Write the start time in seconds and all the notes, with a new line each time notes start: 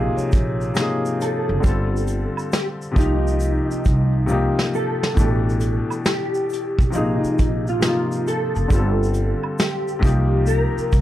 Already playing: A#1 C3 F3 A#3 D#4 G#4 F5
0.17 C#5, muted upright bass stroke, shaker
0.32 A#1, kick, closed hi-hat, shaker
0.61 shaker
0.74 C3 F3 A#3, snare, shaker
0.78 D#4 G#4, shaker
1.06 shaker
1.21 A4, closed hi-hat, shaker
1.49 F#1
1.60 D3 G3 C4, kick, shaker
1.65 G1 F4 A4, shaker
1.97 shaker
2.07 closed hi-hat, shaker
2.37 high woodblock, shaker
2.52 G4, snare, shaker
2.54 shaker
2.82 shaker
2.91 C3 F3 A#3
2.96 C2 D#4 G4, kick, shaker
3.00 closed hi-hat, shaker
3.27 shaker
3.40 shaker
3.41 shaker
3.70 muted upright bass stroke, shaker
3.85 C2, kick, closed hi-hat, shaker
4.26 C3 F3 A#3, shaker
4.31 D#4 G4
4.59 snare
4.74 A4, shaker
5.03 snare
5.14 A1 B2 E3 A3, kick, shaker
5.19 D4 G4, shaker
5.49 shaker
5.60 closed hi-hat, shaker
5.90 high woodblock, shaker
6.05 G4, snare, shaker
6.34 shaker
6.50 closed hi-hat, shaker
6.53 shaker
6.79 B1, kick, shaker
6.90 C3 F3 A#3, shaker
6.94 A#1 D#4 G#4, shaker
7.24 muted upright bass stroke, shaker
7.39 A#1, kick, closed hi-hat, shaker
7.67 F4, shaker
7.80 C3 F3 A#3, snare, shaker
7.84 D#4 F4, shaker
8.12 shaker
8.27 A4, closed hi-hat, shaker
8.55 F#1, shaker
8.68 G1 D3 G3 C4, kick, shaker
8.72 F4 A4, shaker
9.03 shaker
9.14 closed hi-hat, shaker
9.44 high woodblock
9.59 G4, snare, shaker
9.60 shaker
9.88 shaker
9.99 C3 F3 A#3, kick
10.03 C2 D#4 G4, closed hi-hat, shaker
10.06 shaker
10.46 A#4, shaker
10.48 shaker
10.77 muted upright bass stroke, shaker
10.92 C2, kick, closed hi-hat, shaker